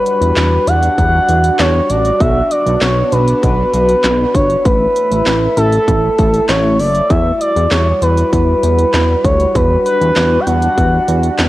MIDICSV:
0, 0, Header, 1, 5, 480
1, 0, Start_track
1, 0, Tempo, 612245
1, 1729, Time_signature, 4, 2, 24, 8
1, 9006, End_track
2, 0, Start_track
2, 0, Title_t, "Analog synth lead"
2, 0, Program_c, 0, 81
2, 46, Note_on_c, 0, 71, 108
2, 526, Note_on_c, 0, 78, 127
2, 538, Note_off_c, 0, 71, 0
2, 1241, Note_off_c, 0, 78, 0
2, 1246, Note_on_c, 0, 73, 102
2, 1486, Note_on_c, 0, 74, 104
2, 1497, Note_off_c, 0, 73, 0
2, 1726, Note_on_c, 0, 76, 108
2, 1738, Note_off_c, 0, 74, 0
2, 1966, Note_on_c, 0, 74, 100
2, 1978, Note_off_c, 0, 76, 0
2, 2206, Note_on_c, 0, 73, 104
2, 2218, Note_off_c, 0, 74, 0
2, 2446, Note_on_c, 0, 71, 97
2, 2458, Note_off_c, 0, 73, 0
2, 2681, Note_off_c, 0, 71, 0
2, 2686, Note_on_c, 0, 71, 108
2, 3407, Note_on_c, 0, 73, 103
2, 3419, Note_off_c, 0, 71, 0
2, 3646, Note_on_c, 0, 71, 108
2, 3658, Note_off_c, 0, 73, 0
2, 4361, Note_off_c, 0, 71, 0
2, 4366, Note_on_c, 0, 69, 102
2, 5056, Note_off_c, 0, 69, 0
2, 5086, Note_on_c, 0, 73, 98
2, 5310, Note_off_c, 0, 73, 0
2, 5327, Note_on_c, 0, 74, 98
2, 5567, Note_on_c, 0, 76, 105
2, 5579, Note_off_c, 0, 74, 0
2, 5802, Note_off_c, 0, 76, 0
2, 5806, Note_on_c, 0, 74, 100
2, 6047, Note_on_c, 0, 73, 100
2, 6058, Note_off_c, 0, 74, 0
2, 6283, Note_off_c, 0, 73, 0
2, 6288, Note_on_c, 0, 71, 91
2, 6511, Note_off_c, 0, 71, 0
2, 6528, Note_on_c, 0, 71, 96
2, 7247, Note_on_c, 0, 73, 93
2, 7259, Note_off_c, 0, 71, 0
2, 7489, Note_on_c, 0, 71, 93
2, 7500, Note_off_c, 0, 73, 0
2, 7723, Note_off_c, 0, 71, 0
2, 7728, Note_on_c, 0, 71, 103
2, 8154, Note_on_c, 0, 79, 70
2, 8166, Note_off_c, 0, 71, 0
2, 8208, Note_on_c, 0, 78, 103
2, 8220, Note_off_c, 0, 79, 0
2, 8928, Note_off_c, 0, 78, 0
2, 9006, End_track
3, 0, Start_track
3, 0, Title_t, "Analog synth pad"
3, 0, Program_c, 1, 89
3, 0, Note_on_c, 1, 55, 78
3, 0, Note_on_c, 1, 62, 75
3, 0, Note_on_c, 1, 66, 90
3, 1697, Note_off_c, 1, 55, 0
3, 1709, Note_off_c, 1, 62, 0
3, 1728, Note_on_c, 1, 59, 81
3, 1728, Note_on_c, 1, 62, 88
3, 3617, Note_off_c, 1, 66, 0
3, 3629, Note_off_c, 1, 59, 0
3, 3629, Note_off_c, 1, 62, 0
3, 3648, Note_on_c, 1, 57, 81
3, 3648, Note_on_c, 1, 64, 73
3, 3648, Note_on_c, 1, 76, 88
3, 5549, Note_off_c, 1, 57, 0
3, 5549, Note_off_c, 1, 64, 0
3, 5549, Note_off_c, 1, 76, 0
3, 5569, Note_on_c, 1, 55, 80
3, 5569, Note_on_c, 1, 64, 71
3, 5569, Note_on_c, 1, 66, 90
3, 7469, Note_off_c, 1, 64, 0
3, 7489, Note_on_c, 1, 62, 74
3, 9006, Note_off_c, 1, 55, 0
3, 9006, Note_off_c, 1, 62, 0
3, 9006, Note_off_c, 1, 66, 0
3, 9006, End_track
4, 0, Start_track
4, 0, Title_t, "Analog synth bass"
4, 0, Program_c, 2, 38
4, 168, Note_on_c, 2, 40, 98
4, 252, Note_off_c, 2, 40, 0
4, 289, Note_on_c, 2, 40, 109
4, 457, Note_off_c, 2, 40, 0
4, 529, Note_on_c, 2, 40, 98
4, 697, Note_off_c, 2, 40, 0
4, 769, Note_on_c, 2, 40, 106
4, 937, Note_off_c, 2, 40, 0
4, 1009, Note_on_c, 2, 40, 105
4, 1177, Note_off_c, 2, 40, 0
4, 1249, Note_on_c, 2, 40, 107
4, 1417, Note_off_c, 2, 40, 0
4, 1488, Note_on_c, 2, 33, 96
4, 1656, Note_off_c, 2, 33, 0
4, 1728, Note_on_c, 2, 35, 112
4, 1896, Note_off_c, 2, 35, 0
4, 2088, Note_on_c, 2, 35, 97
4, 2172, Note_off_c, 2, 35, 0
4, 2208, Note_on_c, 2, 35, 96
4, 2376, Note_off_c, 2, 35, 0
4, 2448, Note_on_c, 2, 35, 98
4, 2616, Note_off_c, 2, 35, 0
4, 2689, Note_on_c, 2, 35, 110
4, 2857, Note_off_c, 2, 35, 0
4, 2928, Note_on_c, 2, 35, 104
4, 3096, Note_off_c, 2, 35, 0
4, 3168, Note_on_c, 2, 35, 102
4, 3336, Note_off_c, 2, 35, 0
4, 3407, Note_on_c, 2, 31, 93
4, 3576, Note_off_c, 2, 31, 0
4, 3648, Note_on_c, 2, 33, 105
4, 3816, Note_off_c, 2, 33, 0
4, 4008, Note_on_c, 2, 33, 95
4, 4092, Note_off_c, 2, 33, 0
4, 4127, Note_on_c, 2, 33, 95
4, 4296, Note_off_c, 2, 33, 0
4, 4368, Note_on_c, 2, 33, 106
4, 4536, Note_off_c, 2, 33, 0
4, 4608, Note_on_c, 2, 33, 100
4, 4776, Note_off_c, 2, 33, 0
4, 4850, Note_on_c, 2, 33, 104
4, 5017, Note_off_c, 2, 33, 0
4, 5087, Note_on_c, 2, 33, 117
4, 5328, Note_on_c, 2, 30, 100
4, 5340, Note_off_c, 2, 33, 0
4, 5496, Note_off_c, 2, 30, 0
4, 5568, Note_on_c, 2, 40, 112
4, 5736, Note_off_c, 2, 40, 0
4, 5928, Note_on_c, 2, 40, 100
4, 6012, Note_off_c, 2, 40, 0
4, 6048, Note_on_c, 2, 40, 107
4, 6216, Note_off_c, 2, 40, 0
4, 6288, Note_on_c, 2, 40, 100
4, 6456, Note_off_c, 2, 40, 0
4, 6529, Note_on_c, 2, 40, 108
4, 6697, Note_off_c, 2, 40, 0
4, 6768, Note_on_c, 2, 40, 98
4, 6936, Note_off_c, 2, 40, 0
4, 7008, Note_on_c, 2, 40, 104
4, 7176, Note_off_c, 2, 40, 0
4, 7248, Note_on_c, 2, 38, 97
4, 7416, Note_off_c, 2, 38, 0
4, 7488, Note_on_c, 2, 40, 108
4, 7656, Note_off_c, 2, 40, 0
4, 7848, Note_on_c, 2, 40, 97
4, 7932, Note_off_c, 2, 40, 0
4, 7968, Note_on_c, 2, 40, 108
4, 8136, Note_off_c, 2, 40, 0
4, 8208, Note_on_c, 2, 40, 98
4, 8376, Note_off_c, 2, 40, 0
4, 8449, Note_on_c, 2, 40, 105
4, 8617, Note_off_c, 2, 40, 0
4, 8688, Note_on_c, 2, 40, 105
4, 8856, Note_off_c, 2, 40, 0
4, 8928, Note_on_c, 2, 40, 106
4, 9006, Note_off_c, 2, 40, 0
4, 9006, End_track
5, 0, Start_track
5, 0, Title_t, "Drums"
5, 49, Note_on_c, 9, 42, 71
5, 127, Note_off_c, 9, 42, 0
5, 170, Note_on_c, 9, 42, 49
5, 249, Note_off_c, 9, 42, 0
5, 287, Note_on_c, 9, 38, 109
5, 287, Note_on_c, 9, 39, 89
5, 290, Note_on_c, 9, 42, 63
5, 366, Note_off_c, 9, 38, 0
5, 366, Note_off_c, 9, 39, 0
5, 368, Note_off_c, 9, 42, 0
5, 528, Note_on_c, 9, 42, 73
5, 606, Note_off_c, 9, 42, 0
5, 648, Note_on_c, 9, 42, 55
5, 726, Note_off_c, 9, 42, 0
5, 769, Note_on_c, 9, 36, 82
5, 770, Note_on_c, 9, 42, 83
5, 848, Note_off_c, 9, 36, 0
5, 848, Note_off_c, 9, 42, 0
5, 1008, Note_on_c, 9, 42, 73
5, 1086, Note_off_c, 9, 42, 0
5, 1128, Note_on_c, 9, 42, 56
5, 1206, Note_off_c, 9, 42, 0
5, 1248, Note_on_c, 9, 38, 124
5, 1248, Note_on_c, 9, 39, 103
5, 1250, Note_on_c, 9, 42, 71
5, 1327, Note_off_c, 9, 38, 0
5, 1327, Note_off_c, 9, 39, 0
5, 1329, Note_off_c, 9, 42, 0
5, 1487, Note_on_c, 9, 42, 81
5, 1566, Note_off_c, 9, 42, 0
5, 1606, Note_on_c, 9, 42, 50
5, 1685, Note_off_c, 9, 42, 0
5, 1728, Note_on_c, 9, 36, 116
5, 1728, Note_on_c, 9, 42, 76
5, 1806, Note_off_c, 9, 42, 0
5, 1807, Note_off_c, 9, 36, 0
5, 1968, Note_on_c, 9, 42, 70
5, 2046, Note_off_c, 9, 42, 0
5, 2090, Note_on_c, 9, 42, 49
5, 2168, Note_off_c, 9, 42, 0
5, 2207, Note_on_c, 9, 38, 116
5, 2207, Note_on_c, 9, 39, 94
5, 2209, Note_on_c, 9, 42, 63
5, 2285, Note_off_c, 9, 38, 0
5, 2285, Note_off_c, 9, 39, 0
5, 2288, Note_off_c, 9, 42, 0
5, 2448, Note_on_c, 9, 42, 71
5, 2526, Note_off_c, 9, 42, 0
5, 2568, Note_on_c, 9, 42, 55
5, 2647, Note_off_c, 9, 42, 0
5, 2689, Note_on_c, 9, 36, 82
5, 2690, Note_on_c, 9, 42, 86
5, 2768, Note_off_c, 9, 36, 0
5, 2768, Note_off_c, 9, 42, 0
5, 2929, Note_on_c, 9, 42, 71
5, 3007, Note_off_c, 9, 42, 0
5, 3048, Note_on_c, 9, 42, 56
5, 3126, Note_off_c, 9, 42, 0
5, 3168, Note_on_c, 9, 38, 124
5, 3168, Note_on_c, 9, 39, 105
5, 3170, Note_on_c, 9, 42, 71
5, 3246, Note_off_c, 9, 38, 0
5, 3246, Note_off_c, 9, 39, 0
5, 3249, Note_off_c, 9, 42, 0
5, 3407, Note_on_c, 9, 36, 98
5, 3408, Note_on_c, 9, 42, 80
5, 3486, Note_off_c, 9, 36, 0
5, 3487, Note_off_c, 9, 42, 0
5, 3527, Note_on_c, 9, 42, 51
5, 3605, Note_off_c, 9, 42, 0
5, 3648, Note_on_c, 9, 36, 118
5, 3648, Note_on_c, 9, 42, 78
5, 3726, Note_off_c, 9, 36, 0
5, 3726, Note_off_c, 9, 42, 0
5, 3888, Note_on_c, 9, 42, 72
5, 3967, Note_off_c, 9, 42, 0
5, 4010, Note_on_c, 9, 42, 48
5, 4089, Note_off_c, 9, 42, 0
5, 4127, Note_on_c, 9, 38, 108
5, 4127, Note_on_c, 9, 39, 90
5, 4129, Note_on_c, 9, 42, 62
5, 4205, Note_off_c, 9, 38, 0
5, 4205, Note_off_c, 9, 39, 0
5, 4208, Note_off_c, 9, 42, 0
5, 4368, Note_on_c, 9, 42, 70
5, 4446, Note_off_c, 9, 42, 0
5, 4488, Note_on_c, 9, 42, 56
5, 4566, Note_off_c, 9, 42, 0
5, 4609, Note_on_c, 9, 36, 79
5, 4609, Note_on_c, 9, 42, 84
5, 4687, Note_off_c, 9, 36, 0
5, 4688, Note_off_c, 9, 42, 0
5, 4847, Note_on_c, 9, 42, 75
5, 4850, Note_on_c, 9, 36, 101
5, 4926, Note_off_c, 9, 42, 0
5, 4928, Note_off_c, 9, 36, 0
5, 4967, Note_on_c, 9, 42, 57
5, 5046, Note_off_c, 9, 42, 0
5, 5087, Note_on_c, 9, 38, 127
5, 5087, Note_on_c, 9, 39, 106
5, 5089, Note_on_c, 9, 42, 70
5, 5166, Note_off_c, 9, 38, 0
5, 5166, Note_off_c, 9, 39, 0
5, 5168, Note_off_c, 9, 42, 0
5, 5327, Note_on_c, 9, 46, 81
5, 5405, Note_off_c, 9, 46, 0
5, 5446, Note_on_c, 9, 42, 49
5, 5525, Note_off_c, 9, 42, 0
5, 5567, Note_on_c, 9, 42, 76
5, 5568, Note_on_c, 9, 36, 121
5, 5646, Note_off_c, 9, 36, 0
5, 5646, Note_off_c, 9, 42, 0
5, 5808, Note_on_c, 9, 42, 73
5, 5887, Note_off_c, 9, 42, 0
5, 5930, Note_on_c, 9, 42, 49
5, 6008, Note_off_c, 9, 42, 0
5, 6046, Note_on_c, 9, 38, 112
5, 6046, Note_on_c, 9, 39, 92
5, 6049, Note_on_c, 9, 42, 62
5, 6125, Note_off_c, 9, 38, 0
5, 6125, Note_off_c, 9, 39, 0
5, 6127, Note_off_c, 9, 42, 0
5, 6288, Note_on_c, 9, 42, 70
5, 6366, Note_off_c, 9, 42, 0
5, 6408, Note_on_c, 9, 42, 54
5, 6487, Note_off_c, 9, 42, 0
5, 6529, Note_on_c, 9, 36, 78
5, 6530, Note_on_c, 9, 42, 88
5, 6607, Note_off_c, 9, 36, 0
5, 6608, Note_off_c, 9, 42, 0
5, 6768, Note_on_c, 9, 42, 74
5, 6846, Note_off_c, 9, 42, 0
5, 6888, Note_on_c, 9, 42, 57
5, 6966, Note_off_c, 9, 42, 0
5, 7008, Note_on_c, 9, 38, 126
5, 7008, Note_on_c, 9, 39, 105
5, 7010, Note_on_c, 9, 42, 69
5, 7086, Note_off_c, 9, 38, 0
5, 7086, Note_off_c, 9, 39, 0
5, 7089, Note_off_c, 9, 42, 0
5, 7247, Note_on_c, 9, 36, 95
5, 7247, Note_on_c, 9, 42, 80
5, 7326, Note_off_c, 9, 36, 0
5, 7326, Note_off_c, 9, 42, 0
5, 7367, Note_on_c, 9, 42, 51
5, 7445, Note_off_c, 9, 42, 0
5, 7488, Note_on_c, 9, 36, 113
5, 7488, Note_on_c, 9, 42, 74
5, 7567, Note_off_c, 9, 36, 0
5, 7567, Note_off_c, 9, 42, 0
5, 7729, Note_on_c, 9, 42, 70
5, 7807, Note_off_c, 9, 42, 0
5, 7850, Note_on_c, 9, 42, 48
5, 7929, Note_off_c, 9, 42, 0
5, 7967, Note_on_c, 9, 38, 112
5, 7967, Note_on_c, 9, 39, 90
5, 7969, Note_on_c, 9, 42, 61
5, 8045, Note_off_c, 9, 38, 0
5, 8045, Note_off_c, 9, 39, 0
5, 8048, Note_off_c, 9, 42, 0
5, 8208, Note_on_c, 9, 42, 72
5, 8286, Note_off_c, 9, 42, 0
5, 8328, Note_on_c, 9, 42, 57
5, 8406, Note_off_c, 9, 42, 0
5, 8449, Note_on_c, 9, 36, 81
5, 8449, Note_on_c, 9, 42, 85
5, 8527, Note_off_c, 9, 36, 0
5, 8528, Note_off_c, 9, 42, 0
5, 8688, Note_on_c, 9, 42, 76
5, 8766, Note_off_c, 9, 42, 0
5, 8807, Note_on_c, 9, 42, 56
5, 8886, Note_off_c, 9, 42, 0
5, 8928, Note_on_c, 9, 38, 127
5, 8928, Note_on_c, 9, 39, 106
5, 8930, Note_on_c, 9, 42, 70
5, 9006, Note_off_c, 9, 38, 0
5, 9006, Note_off_c, 9, 39, 0
5, 9006, Note_off_c, 9, 42, 0
5, 9006, End_track
0, 0, End_of_file